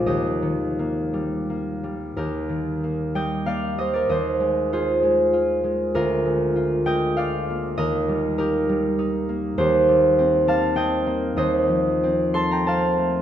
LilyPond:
<<
  \new Staff \with { instrumentName = "Harp" } { \time 3/4 \key ees \major \tempo 4 = 97 <g' ees''>2. | <g' bes'>4. <ees'' g''>8 <d'' f''>8 <c'' ees''>16 <bes' d''>16 | <c'' ees''>4 <aes' c''>2 | <f' bes'>4. <ees'' g''>8 <d'' f''>4 |
<bes' ees''>4 <g' bes'>2 | \key f \mixolydian <g' c''>4. <f'' a''>8 <ees'' g''>4 | <c'' ees''>4. <a'' c'''>16 <g'' bes''>16 <f'' a''>4 | }
  \new Staff \with { instrumentName = "Harp" } { \clef bass \time 3/4 \key ees \major <ees, bes>8 ees8 bes8 g8 bes8 g8 | ees,8 ees8 bes8 g8 bes8 g8 | ees,8 aes8 f'8 aes8 f'8 aes8 | d,8 aes8 f'8 aes8 f'8 bes8 |
ees,8 g8 ees'8 g8 ees'8 bes8 | \key f \mixolydian ees,8 g8 c'8 g8 c'8 bes8 | ees,8 f8 c'8 a'8 c'8 a8 | }
>>